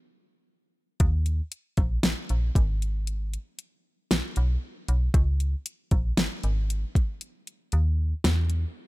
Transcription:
0, 0, Header, 1, 3, 480
1, 0, Start_track
1, 0, Tempo, 1034483
1, 464, Time_signature, 4, 2, 24, 8
1, 4117, End_track
2, 0, Start_track
2, 0, Title_t, "FM bass"
2, 0, Program_c, 0, 39
2, 466, Note_on_c, 0, 39, 109
2, 654, Note_off_c, 0, 39, 0
2, 825, Note_on_c, 0, 34, 90
2, 919, Note_off_c, 0, 34, 0
2, 948, Note_on_c, 0, 34, 51
2, 995, Note_off_c, 0, 34, 0
2, 1068, Note_on_c, 0, 34, 82
2, 1161, Note_off_c, 0, 34, 0
2, 1186, Note_on_c, 0, 32, 102
2, 1564, Note_off_c, 0, 32, 0
2, 1908, Note_on_c, 0, 35, 46
2, 1955, Note_off_c, 0, 35, 0
2, 2028, Note_on_c, 0, 35, 94
2, 2121, Note_off_c, 0, 35, 0
2, 2267, Note_on_c, 0, 35, 93
2, 2361, Note_off_c, 0, 35, 0
2, 2386, Note_on_c, 0, 37, 109
2, 2575, Note_off_c, 0, 37, 0
2, 2745, Note_on_c, 0, 34, 88
2, 2840, Note_off_c, 0, 34, 0
2, 2867, Note_on_c, 0, 32, 51
2, 2915, Note_off_c, 0, 32, 0
2, 2987, Note_on_c, 0, 32, 92
2, 3175, Note_off_c, 0, 32, 0
2, 3587, Note_on_c, 0, 39, 90
2, 3775, Note_off_c, 0, 39, 0
2, 3826, Note_on_c, 0, 40, 99
2, 4015, Note_off_c, 0, 40, 0
2, 4117, End_track
3, 0, Start_track
3, 0, Title_t, "Drums"
3, 464, Note_on_c, 9, 42, 75
3, 465, Note_on_c, 9, 36, 117
3, 510, Note_off_c, 9, 42, 0
3, 511, Note_off_c, 9, 36, 0
3, 584, Note_on_c, 9, 42, 50
3, 630, Note_off_c, 9, 42, 0
3, 704, Note_on_c, 9, 42, 78
3, 750, Note_off_c, 9, 42, 0
3, 822, Note_on_c, 9, 42, 45
3, 824, Note_on_c, 9, 36, 89
3, 868, Note_off_c, 9, 42, 0
3, 871, Note_off_c, 9, 36, 0
3, 943, Note_on_c, 9, 38, 110
3, 944, Note_on_c, 9, 42, 63
3, 990, Note_off_c, 9, 38, 0
3, 991, Note_off_c, 9, 42, 0
3, 1064, Note_on_c, 9, 42, 54
3, 1111, Note_off_c, 9, 42, 0
3, 1185, Note_on_c, 9, 36, 111
3, 1188, Note_on_c, 9, 42, 71
3, 1231, Note_off_c, 9, 36, 0
3, 1234, Note_off_c, 9, 42, 0
3, 1309, Note_on_c, 9, 42, 48
3, 1356, Note_off_c, 9, 42, 0
3, 1426, Note_on_c, 9, 42, 68
3, 1472, Note_off_c, 9, 42, 0
3, 1548, Note_on_c, 9, 42, 50
3, 1594, Note_off_c, 9, 42, 0
3, 1664, Note_on_c, 9, 42, 64
3, 1711, Note_off_c, 9, 42, 0
3, 1906, Note_on_c, 9, 38, 122
3, 1909, Note_on_c, 9, 42, 78
3, 1953, Note_off_c, 9, 38, 0
3, 1955, Note_off_c, 9, 42, 0
3, 2023, Note_on_c, 9, 42, 54
3, 2069, Note_off_c, 9, 42, 0
3, 2266, Note_on_c, 9, 42, 62
3, 2313, Note_off_c, 9, 42, 0
3, 2385, Note_on_c, 9, 36, 123
3, 2386, Note_on_c, 9, 42, 72
3, 2432, Note_off_c, 9, 36, 0
3, 2432, Note_off_c, 9, 42, 0
3, 2506, Note_on_c, 9, 42, 51
3, 2553, Note_off_c, 9, 42, 0
3, 2625, Note_on_c, 9, 42, 87
3, 2671, Note_off_c, 9, 42, 0
3, 2743, Note_on_c, 9, 42, 46
3, 2745, Note_on_c, 9, 36, 95
3, 2790, Note_off_c, 9, 42, 0
3, 2791, Note_off_c, 9, 36, 0
3, 2865, Note_on_c, 9, 38, 114
3, 2866, Note_on_c, 9, 42, 63
3, 2911, Note_off_c, 9, 38, 0
3, 2912, Note_off_c, 9, 42, 0
3, 2986, Note_on_c, 9, 42, 52
3, 3032, Note_off_c, 9, 42, 0
3, 3109, Note_on_c, 9, 42, 76
3, 3156, Note_off_c, 9, 42, 0
3, 3226, Note_on_c, 9, 36, 96
3, 3231, Note_on_c, 9, 42, 48
3, 3273, Note_off_c, 9, 36, 0
3, 3277, Note_off_c, 9, 42, 0
3, 3346, Note_on_c, 9, 42, 68
3, 3392, Note_off_c, 9, 42, 0
3, 3467, Note_on_c, 9, 42, 49
3, 3514, Note_off_c, 9, 42, 0
3, 3583, Note_on_c, 9, 42, 62
3, 3629, Note_off_c, 9, 42, 0
3, 3825, Note_on_c, 9, 38, 118
3, 3827, Note_on_c, 9, 42, 75
3, 3871, Note_off_c, 9, 38, 0
3, 3873, Note_off_c, 9, 42, 0
3, 3942, Note_on_c, 9, 42, 52
3, 3989, Note_off_c, 9, 42, 0
3, 4117, End_track
0, 0, End_of_file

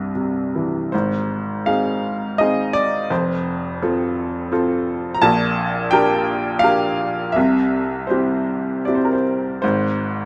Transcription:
0, 0, Header, 1, 2, 480
1, 0, Start_track
1, 0, Tempo, 766284
1, 582, Time_signature, 3, 2, 24, 8
1, 1049, Tempo, 710900
1, 4889, Tempo, 758534
1, 6718, End_track
2, 0, Start_track
2, 0, Title_t, "Upright piano"
2, 0, Program_c, 0, 0
2, 0, Control_c, 0, 64, 127
2, 0, Note_on_c, 0, 36, 46
2, 0, Note_on_c, 0, 43, 37
2, 95, Note_on_c, 0, 48, 39
2, 346, Note_on_c, 0, 52, 37
2, 561, Note_off_c, 0, 36, 0
2, 565, Note_off_c, 0, 43, 0
2, 568, Note_off_c, 0, 48, 0
2, 577, Note_on_c, 0, 72, 54
2, 578, Note_off_c, 0, 52, 0
2, 589, Note_on_c, 0, 44, 49
2, 590, Note_on_c, 0, 32, 44
2, 591, Control_c, 0, 64, 0
2, 683, Control_c, 0, 64, 127
2, 1041, Note_on_c, 0, 77, 69
2, 1047, Note_on_c, 0, 60, 38
2, 1047, Note_on_c, 0, 63, 33
2, 1049, Note_on_c, 0, 68, 43
2, 1062, Note_off_c, 0, 72, 0
2, 1521, Note_off_c, 0, 60, 0
2, 1521, Note_off_c, 0, 63, 0
2, 1522, Note_off_c, 0, 68, 0
2, 1528, Note_on_c, 0, 75, 72
2, 1540, Note_on_c, 0, 63, 36
2, 1541, Note_on_c, 0, 60, 42
2, 1543, Note_on_c, 0, 68, 49
2, 1547, Note_off_c, 0, 77, 0
2, 1754, Note_off_c, 0, 75, 0
2, 1764, Note_on_c, 0, 74, 78
2, 1989, Note_off_c, 0, 32, 0
2, 1989, Note_off_c, 0, 44, 0
2, 2000, Note_off_c, 0, 60, 0
2, 2000, Note_off_c, 0, 63, 0
2, 2002, Note_off_c, 0, 68, 0
2, 2014, Note_off_c, 0, 74, 0
2, 2014, Note_on_c, 0, 72, 57
2, 2015, Note_on_c, 0, 29, 60
2, 2015, Note_on_c, 0, 41, 63
2, 2021, Control_c, 0, 64, 0
2, 2142, Control_c, 0, 64, 127
2, 2466, Note_off_c, 0, 72, 0
2, 2500, Note_on_c, 0, 60, 45
2, 2500, Note_on_c, 0, 69, 47
2, 2504, Note_on_c, 0, 65, 41
2, 2957, Note_off_c, 0, 60, 0
2, 2962, Note_off_c, 0, 65, 0
2, 2962, Note_off_c, 0, 69, 0
2, 2968, Note_on_c, 0, 60, 48
2, 2972, Note_on_c, 0, 65, 45
2, 2974, Note_on_c, 0, 69, 54
2, 3392, Note_on_c, 0, 82, 71
2, 3418, Note_off_c, 0, 29, 0
2, 3418, Note_off_c, 0, 41, 0
2, 3427, Note_off_c, 0, 60, 0
2, 3430, Note_off_c, 0, 65, 0
2, 3431, Note_off_c, 0, 69, 0
2, 3440, Note_off_c, 0, 82, 0
2, 3440, Note_on_c, 0, 81, 91
2, 3442, Note_on_c, 0, 34, 64
2, 3443, Note_on_c, 0, 46, 74
2, 3453, Control_c, 0, 64, 0
2, 3572, Control_c, 0, 64, 127
2, 3887, Note_off_c, 0, 81, 0
2, 3907, Note_on_c, 0, 79, 92
2, 3917, Note_on_c, 0, 62, 50
2, 3920, Note_on_c, 0, 67, 50
2, 3922, Note_on_c, 0, 70, 61
2, 4370, Note_on_c, 0, 77, 89
2, 4381, Note_off_c, 0, 62, 0
2, 4382, Note_off_c, 0, 67, 0
2, 4383, Note_off_c, 0, 70, 0
2, 4394, Note_on_c, 0, 62, 50
2, 4399, Note_on_c, 0, 67, 48
2, 4402, Note_on_c, 0, 70, 47
2, 4404, Note_off_c, 0, 79, 0
2, 4859, Note_off_c, 0, 34, 0
2, 4860, Note_off_c, 0, 46, 0
2, 4863, Note_on_c, 0, 76, 67
2, 4873, Note_off_c, 0, 62, 0
2, 4875, Note_off_c, 0, 67, 0
2, 4877, Note_off_c, 0, 70, 0
2, 4889, Note_on_c, 0, 36, 59
2, 4889, Note_on_c, 0, 48, 59
2, 4890, Note_off_c, 0, 77, 0
2, 4895, Control_c, 0, 64, 0
2, 5003, Control_c, 0, 64, 127
2, 5323, Note_off_c, 0, 76, 0
2, 5338, Note_on_c, 0, 72, 49
2, 5357, Note_on_c, 0, 64, 38
2, 5358, Note_on_c, 0, 60, 44
2, 5362, Note_on_c, 0, 67, 45
2, 5807, Note_off_c, 0, 72, 0
2, 5824, Note_off_c, 0, 60, 0
2, 5824, Note_off_c, 0, 64, 0
2, 5826, Note_off_c, 0, 67, 0
2, 5832, Note_on_c, 0, 74, 46
2, 5846, Note_on_c, 0, 64, 33
2, 5847, Note_on_c, 0, 60, 36
2, 5851, Note_on_c, 0, 67, 37
2, 5894, Note_on_c, 0, 72, 46
2, 5898, Note_off_c, 0, 74, 0
2, 5956, Note_on_c, 0, 70, 43
2, 5958, Note_off_c, 0, 72, 0
2, 6007, Note_on_c, 0, 72, 45
2, 6019, Note_off_c, 0, 70, 0
2, 6074, Note_off_c, 0, 72, 0
2, 6298, Note_off_c, 0, 36, 0
2, 6298, Note_off_c, 0, 48, 0
2, 6311, Note_off_c, 0, 64, 0
2, 6312, Note_off_c, 0, 60, 0
2, 6314, Note_off_c, 0, 67, 0
2, 6317, Note_on_c, 0, 72, 65
2, 6329, Note_on_c, 0, 44, 62
2, 6330, Note_on_c, 0, 32, 56
2, 6331, Control_c, 0, 64, 0
2, 6460, Control_c, 0, 64, 127
2, 6718, Note_off_c, 0, 32, 0
2, 6718, Note_off_c, 0, 44, 0
2, 6718, Note_off_c, 0, 72, 0
2, 6718, End_track
0, 0, End_of_file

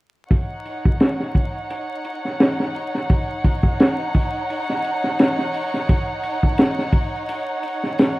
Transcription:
0, 0, Header, 1, 3, 480
1, 0, Start_track
1, 0, Key_signature, -6, "minor"
1, 0, Tempo, 697674
1, 213, Time_signature, 4, 2, 24, 8
1, 5638, End_track
2, 0, Start_track
2, 0, Title_t, "Violin section"
2, 0, Program_c, 0, 48
2, 209, Note_on_c, 0, 73, 57
2, 209, Note_on_c, 0, 78, 72
2, 210, Note_on_c, 0, 63, 63
2, 5638, Note_off_c, 0, 63, 0
2, 5638, Note_off_c, 0, 73, 0
2, 5638, Note_off_c, 0, 78, 0
2, 5638, End_track
3, 0, Start_track
3, 0, Title_t, "Drums"
3, 211, Note_on_c, 9, 36, 90
3, 213, Note_on_c, 9, 46, 73
3, 280, Note_off_c, 9, 36, 0
3, 281, Note_off_c, 9, 46, 0
3, 449, Note_on_c, 9, 46, 56
3, 518, Note_off_c, 9, 46, 0
3, 588, Note_on_c, 9, 36, 90
3, 656, Note_off_c, 9, 36, 0
3, 689, Note_on_c, 9, 46, 75
3, 693, Note_on_c, 9, 38, 100
3, 758, Note_off_c, 9, 46, 0
3, 762, Note_off_c, 9, 38, 0
3, 826, Note_on_c, 9, 38, 35
3, 895, Note_off_c, 9, 38, 0
3, 928, Note_on_c, 9, 36, 83
3, 931, Note_on_c, 9, 46, 57
3, 997, Note_off_c, 9, 36, 0
3, 1000, Note_off_c, 9, 46, 0
3, 1172, Note_on_c, 9, 46, 72
3, 1240, Note_off_c, 9, 46, 0
3, 1407, Note_on_c, 9, 46, 57
3, 1476, Note_off_c, 9, 46, 0
3, 1548, Note_on_c, 9, 38, 27
3, 1617, Note_off_c, 9, 38, 0
3, 1651, Note_on_c, 9, 46, 77
3, 1653, Note_on_c, 9, 38, 104
3, 1720, Note_off_c, 9, 46, 0
3, 1722, Note_off_c, 9, 38, 0
3, 1788, Note_on_c, 9, 38, 44
3, 1857, Note_off_c, 9, 38, 0
3, 1890, Note_on_c, 9, 46, 57
3, 1959, Note_off_c, 9, 46, 0
3, 2028, Note_on_c, 9, 38, 33
3, 2097, Note_off_c, 9, 38, 0
3, 2129, Note_on_c, 9, 46, 69
3, 2132, Note_on_c, 9, 36, 93
3, 2198, Note_off_c, 9, 46, 0
3, 2201, Note_off_c, 9, 36, 0
3, 2370, Note_on_c, 9, 36, 87
3, 2370, Note_on_c, 9, 46, 62
3, 2439, Note_off_c, 9, 36, 0
3, 2439, Note_off_c, 9, 46, 0
3, 2499, Note_on_c, 9, 36, 85
3, 2568, Note_off_c, 9, 36, 0
3, 2612, Note_on_c, 9, 46, 69
3, 2617, Note_on_c, 9, 38, 106
3, 2681, Note_off_c, 9, 46, 0
3, 2685, Note_off_c, 9, 38, 0
3, 2852, Note_on_c, 9, 46, 61
3, 2853, Note_on_c, 9, 36, 80
3, 2921, Note_off_c, 9, 46, 0
3, 2922, Note_off_c, 9, 36, 0
3, 3096, Note_on_c, 9, 46, 67
3, 3164, Note_off_c, 9, 46, 0
3, 3231, Note_on_c, 9, 38, 34
3, 3299, Note_off_c, 9, 38, 0
3, 3332, Note_on_c, 9, 46, 61
3, 3401, Note_off_c, 9, 46, 0
3, 3467, Note_on_c, 9, 38, 34
3, 3536, Note_off_c, 9, 38, 0
3, 3571, Note_on_c, 9, 46, 78
3, 3576, Note_on_c, 9, 38, 92
3, 3640, Note_off_c, 9, 46, 0
3, 3645, Note_off_c, 9, 38, 0
3, 3706, Note_on_c, 9, 38, 37
3, 3775, Note_off_c, 9, 38, 0
3, 3810, Note_on_c, 9, 46, 62
3, 3879, Note_off_c, 9, 46, 0
3, 3948, Note_on_c, 9, 38, 34
3, 4017, Note_off_c, 9, 38, 0
3, 4052, Note_on_c, 9, 46, 73
3, 4053, Note_on_c, 9, 36, 93
3, 4121, Note_off_c, 9, 46, 0
3, 4122, Note_off_c, 9, 36, 0
3, 4288, Note_on_c, 9, 46, 59
3, 4357, Note_off_c, 9, 46, 0
3, 4425, Note_on_c, 9, 36, 77
3, 4494, Note_off_c, 9, 36, 0
3, 4526, Note_on_c, 9, 46, 79
3, 4534, Note_on_c, 9, 38, 100
3, 4595, Note_off_c, 9, 46, 0
3, 4603, Note_off_c, 9, 38, 0
3, 4670, Note_on_c, 9, 38, 37
3, 4739, Note_off_c, 9, 38, 0
3, 4766, Note_on_c, 9, 36, 91
3, 4768, Note_on_c, 9, 46, 55
3, 4834, Note_off_c, 9, 36, 0
3, 4837, Note_off_c, 9, 46, 0
3, 5013, Note_on_c, 9, 46, 71
3, 5082, Note_off_c, 9, 46, 0
3, 5250, Note_on_c, 9, 46, 53
3, 5318, Note_off_c, 9, 46, 0
3, 5391, Note_on_c, 9, 38, 31
3, 5460, Note_off_c, 9, 38, 0
3, 5493, Note_on_c, 9, 46, 81
3, 5500, Note_on_c, 9, 38, 95
3, 5562, Note_off_c, 9, 46, 0
3, 5569, Note_off_c, 9, 38, 0
3, 5638, End_track
0, 0, End_of_file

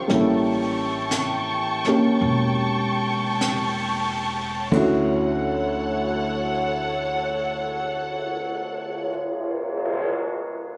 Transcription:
0, 0, Header, 1, 6, 480
1, 0, Start_track
1, 0, Key_signature, 2, "major"
1, 0, Tempo, 1018676
1, 44, Time_signature, 4, 2, 24, 8
1, 526, Tempo, 1094891
1, 1006, Tempo, 1188119
1, 1486, Tempo, 1318681
1, 1966, Tempo, 1392111
1, 4053, End_track
2, 0, Start_track
2, 0, Title_t, "String section"
2, 0, Program_c, 0, 48
2, 43, Note_on_c, 0, 81, 49
2, 45, Note_on_c, 0, 85, 57
2, 47, Note_on_c, 0, 79, 51
2, 1951, Note_off_c, 0, 81, 0
2, 1951, Note_off_c, 0, 85, 0
2, 1952, Note_off_c, 0, 79, 0
2, 1971, Note_on_c, 0, 78, 62
2, 1972, Note_on_c, 0, 69, 47
2, 1972, Note_on_c, 0, 73, 47
2, 3458, Note_off_c, 0, 69, 0
2, 3458, Note_off_c, 0, 78, 0
2, 3459, Note_off_c, 0, 73, 0
2, 4053, End_track
3, 0, Start_track
3, 0, Title_t, "Grand piano"
3, 0, Program_c, 1, 0
3, 0, Control_c, 1, 64, 127
3, 0, Note_on_c, 1, 53, 55
3, 0, Note_on_c, 1, 60, 49
3, 0, Note_on_c, 1, 61, 47
3, 0, Note_on_c, 1, 67, 58
3, 36, Note_on_c, 1, 55, 40
3, 41, Note_on_c, 1, 58, 39
3, 46, Note_off_c, 1, 61, 0
3, 46, Note_on_c, 1, 61, 36
3, 51, Note_off_c, 1, 60, 0
3, 51, Control_c, 1, 64, 0
3, 54, Note_on_c, 1, 64, 38
3, 55, Note_off_c, 1, 53, 0
3, 60, Note_off_c, 1, 67, 0
3, 60, Note_on_c, 1, 69, 49
3, 125, Control_c, 1, 64, 127
3, 848, Note_off_c, 1, 58, 0
3, 854, Note_off_c, 1, 61, 0
3, 854, Note_on_c, 1, 58, 37
3, 861, Note_on_c, 1, 61, 35
3, 863, Note_on_c, 1, 67, 38
3, 1962, Note_off_c, 1, 55, 0
3, 1962, Note_off_c, 1, 61, 0
3, 1965, Note_on_c, 1, 38, 48
3, 1966, Note_off_c, 1, 58, 0
3, 1967, Note_on_c, 1, 50, 43
3, 1967, Note_on_c, 1, 61, 43
3, 1968, Note_off_c, 1, 64, 0
3, 1969, Control_c, 1, 64, 0
3, 1970, Note_off_c, 1, 67, 0
3, 1971, Note_off_c, 1, 69, 0
3, 1974, Note_on_c, 1, 64, 45
3, 1975, Note_on_c, 1, 66, 55
3, 2033, Control_c, 1, 64, 127
3, 3465, Note_off_c, 1, 38, 0
3, 3467, Note_off_c, 1, 50, 0
3, 3468, Note_off_c, 1, 61, 0
3, 3474, Note_off_c, 1, 64, 0
3, 3476, Note_off_c, 1, 66, 0
3, 4053, End_track
4, 0, Start_track
4, 0, Title_t, "Upright bass"
4, 0, Program_c, 2, 32
4, 48, Note_on_c, 2, 33, 67
4, 989, Note_off_c, 2, 33, 0
4, 1006, Note_on_c, 2, 28, 64
4, 1951, Note_off_c, 2, 28, 0
4, 1966, Note_on_c, 2, 38, 62
4, 3453, Note_off_c, 2, 38, 0
4, 4053, End_track
5, 0, Start_track
5, 0, Title_t, "Cymbal swell"
5, 2299, Note_on_c, 9, 59, 35
5, 3797, Note_off_c, 9, 59, 0
5, 4053, End_track
6, 0, Start_track
6, 0, Title_t, "Drums"
6, 45, Note_on_c, 9, 25, 32
6, 45, Note_on_c, 9, 38, 28
6, 92, Note_off_c, 9, 38, 0
6, 523, Note_on_c, 9, 38, 40
6, 523, Note_on_c, 9, 44, 50
6, 567, Note_off_c, 9, 38, 0
6, 567, Note_off_c, 9, 44, 0
6, 846, Note_on_c, 9, 38, 23
6, 890, Note_off_c, 9, 38, 0
6, 1010, Note_off_c, 9, 25, 0
6, 1010, Note_on_c, 9, 25, 31
6, 1490, Note_on_c, 9, 38, 35
6, 1490, Note_on_c, 9, 44, 38
6, 1526, Note_off_c, 9, 38, 0
6, 1526, Note_off_c, 9, 44, 0
6, 1966, Note_on_c, 9, 36, 44
6, 1969, Note_on_c, 9, 49, 42
6, 2000, Note_off_c, 9, 36, 0
6, 2004, Note_off_c, 9, 49, 0
6, 2358, Note_off_c, 9, 25, 0
6, 4053, End_track
0, 0, End_of_file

